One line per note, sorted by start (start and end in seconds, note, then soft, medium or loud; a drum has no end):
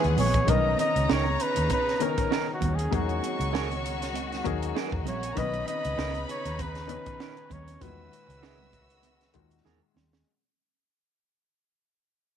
0.00 0.23 E3 medium
0.00 0.47 E3 medium
0.00 0.24 G#3 medium
0.00 0.27 B3 medium
0.00 0.47 B3 medium
0.00 0.24 C#4 medium
0.00 0.46 C#4 medium
0.00 0.25 F#4 loud
0.00 0.47 G#4 medium
0.00 0.46 B4 medium
0.00 0.46 F#5 medium
0.04 0.16 D#2 medium
0.04 closed hi-hat soft
0.17 0.43 A#1 medium
0.17 0.51 C#5 loud
0.17 open hi-hat medium
0.17 high conga medium
0.17 low conga medium
0.34 kick medium
0.34 closed hi-hat medium
0.47 0.74 B1 loud
0.47 2.91 C#3 medium
0.47 1.45 D#3 medium
0.47 1.46 B3 medium
0.47 1.46 C#4 medium
0.47 5.34 C#4 medium
0.47 2.91 D#4 medium
0.47 1.46 A#4 medium
0.47 2.58 C#5 medium
0.47 0.79 D#5 loud
0.47 2.58 A#5 loud
0.47 kick loud
0.47 closed hi-hat medium
0.47 low conga medium
0.78 1.14 D#5 loud
0.78 closed hi-hat medium
0.78 muted conga soft
0.78 high conga medium
0.96 1.07 C#2 medium
0.96 closed hi-hat soft
1.09 1.35 C#2 medium
1.09 1.23 C#4 medium
1.09 1.24 D#4 medium
1.09 1.24 A#4 medium
1.09 1.43 C#5 medium
1.09 snare loud
1.25 high conga medium
1.40 1.71 B4 loud
1.40 closed hi-hat medium
1.56 1.68 D#2 medium
1.56 closed hi-hat medium
1.69 2.04 B4 medium
1.69 kick medium
1.69 closed hi-hat medium
1.69 high conga medium
1.88 snare soft
2.00 2.74 D#3 medium
2.00 2.74 B3 medium
2.00 2.75 C#4 medium
2.00 2.75 A#4 medium
2.00 2.53 A#4 medium
2.00 closed hi-hat medium
2.00 muted conga soft
2.18 kick medium
2.18 closed hi-hat medium
2.31 2.45 C#4 medium
2.31 2.46 D#4 medium
2.31 2.46 A#4 medium
2.31 snare loud
2.31 muted conga soft
2.54 2.77 F#4 medium
2.61 2.88 D#2 medium
2.61 kick medium
2.61 closed hi-hat medium
2.61 high conga medium
2.61 low conga medium
2.76 2.97 G#4 medium
2.76 closed hi-hat medium
2.91 3.18 E2 loud
2.91 5.35 D#3 medium
2.91 3.89 F#3 medium
2.91 5.35 G#3 medium
2.91 3.90 A#3 medium
2.91 3.90 D#4 medium
2.91 5.35 F#4 medium
2.91 3.55 F#4 medium
2.91 3.90 G#4 medium
2.91 4.74 C#5 loud
2.91 4.74 C#6 loud
2.91 kick loud
2.91 closed hi-hat medium
2.91 muted conga soft
2.91 low conga medium
3.09 closed hi-hat soft
3.23 closed hi-hat medium
3.23 muted conga soft
3.23 high conga medium
3.40 4.41 C#2 medium
3.40 closed hi-hat soft
3.53 3.67 D#4 medium
3.53 3.67 G#4 medium
3.53 3.68 A#4 medium
3.53 snare loud
3.53 muted conga soft
3.70 closed hi-hat soft
3.70 high conga medium
3.85 closed hi-hat medium
3.85 muted conga soft
4.02 snare soft
4.02 closed hi-hat medium
4.14 closed hi-hat medium
4.14 high conga medium
4.32 snare soft
4.32 closed hi-hat soft
4.44 4.71 D#2 medium
4.44 5.19 F#3 medium
4.44 5.19 A#3 medium
4.44 5.20 D#4 medium
4.44 5.20 G#4 medium
4.44 kick loud
4.44 closed hi-hat medium
4.63 closed hi-hat medium
4.75 4.89 D#4 medium
4.75 4.90 G#4 medium
4.75 4.90 A#4 medium
4.75 snare loud
4.75 muted conga soft
4.84 4.92 B3 medium
4.84 4.93 B4 medium
4.92 5.07 E2 medium
4.92 5.00 C#4 medium
4.92 5.00 C#5 medium
4.92 kick loud
5.01 5.07 D#4 medium
5.01 5.07 D#5 medium
5.06 5.32 A#1 medium
5.06 5.15 E4 medium
5.06 5.39 C#5 medium
5.06 5.15 E5 medium
5.06 closed hi-hat medium
5.06 muted conga soft
5.06 high conga medium
5.06 low conga medium
5.16 5.24 F#4 medium
5.16 5.24 F#5 medium
5.23 5.30 G#4 medium
5.23 5.31 G#5 medium
5.23 closed hi-hat medium
5.31 6.34 D#3 medium
5.31 5.38 A#4 medium
5.31 5.38 A#5 medium
5.37 5.63 B1 medium
5.37 7.79 C#3 medium
5.37 6.34 B3 medium
5.37 6.35 C#4 medium
5.37 10.23 C#4 medium
5.37 7.80 D#4 medium
5.37 6.35 B4 medium
5.37 7.48 B4 loud
5.37 5.67 D#5 loud
5.37 7.48 B5 loud
5.37 kick loud
5.37 closed hi-hat medium
5.37 low conga medium
5.54 closed hi-hat soft
5.67 6.25 D#5 loud
5.67 closed hi-hat medium
5.67 high conga medium
5.85 5.96 C#2 medium
5.85 closed hi-hat soft
5.98 6.23 C#2 medium
5.98 6.12 C#4 medium
5.98 6.12 D#4 medium
5.98 6.13 A#4 medium
5.98 snare loud
6.14 closed hi-hat soft
6.14 high conga medium
6.29 6.63 C#5 loud
6.29 closed hi-hat medium
6.29 muted conga soft
6.45 6.96 D#2 medium
6.45 closed hi-hat medium
6.59 7.54 B4 loud
6.59 kick medium
6.59 closed hi-hat medium
6.59 muted conga soft
6.59 high conga medium
6.75 snare soft
6.75 closed hi-hat soft
6.88 7.63 D#3 medium
6.88 7.63 B3 medium
6.88 7.64 C#4 medium
6.88 7.64 B4 medium
6.88 closed hi-hat medium
6.88 muted conga soft
7.06 kick medium
7.06 closed hi-hat medium
7.20 7.34 C#4 medium
7.20 7.35 D#4 medium
7.20 7.35 A#4 medium
7.20 snare loud
7.37 closed hi-hat soft
7.50 7.77 D#2 medium
7.50 7.84 C#5 medium
7.50 kick medium
7.50 closed hi-hat medium
7.50 muted conga soft
7.50 high conga medium
7.50 low conga medium
7.68 closed hi-hat medium
7.81 8.07 E2 medium
7.81 8.80 A#2 medium
7.81 8.79 D#3 medium
7.81 10.24 D#3 medium
7.81 8.79 G#3 medium
7.81 10.24 G#3 medium
7.81 10.24 F#4 medium
7.81 8.80 F#4 medium
7.81 9.65 B4 medium
7.81 9.92 E5 medium
7.81 9.92 E6 loud
7.81 kick loud
7.81 closed hi-hat medium
7.81 low conga medium
8.13 closed hi-hat medium
8.28 9.30 C#2 medium
8.28 closed hi-hat soft
8.43 8.57 D#4 medium
8.43 8.57 G#4 medium
8.43 8.57 A#4 medium
8.43 snare loud
8.58 high conga medium
8.58 low conga medium
8.73 kick medium
8.73 closed hi-hat medium
8.73 muted conga soft
8.90 closed hi-hat medium
9.03 closed hi-hat medium
9.03 high conga medium
9.21 snare soft
9.21 closed hi-hat soft
9.34 9.61 D#2 medium
9.34 10.09 A#2 medium
9.34 10.08 D#3 medium
9.34 10.08 G#3 medium
9.34 10.09 F#4 medium
9.34 kick medium
9.34 closed hi-hat medium
9.51 closed hi-hat medium
9.65 9.79 E2 medium
9.65 9.79 D#4 medium
9.65 9.79 G#4 medium
9.65 9.80 A#4 medium
9.65 snare medium
9.95 10.21 D#2 medium
9.95 snare medium
9.95 high conga medium
9.95 low conga medium
10.13 snare medium